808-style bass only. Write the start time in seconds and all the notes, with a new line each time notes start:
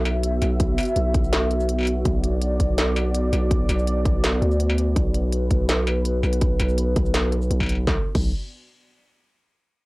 Already playing: B1
0.42 B1
0.96 B1
2.05 B1
2.60 B1
3.33 B1
3.69 B1
4.42 D2
4.96 B1
5.51 B1
6.23 B1
6.60 B1
6.96 B1
7.51 B1
7.87 B1
8.15 B1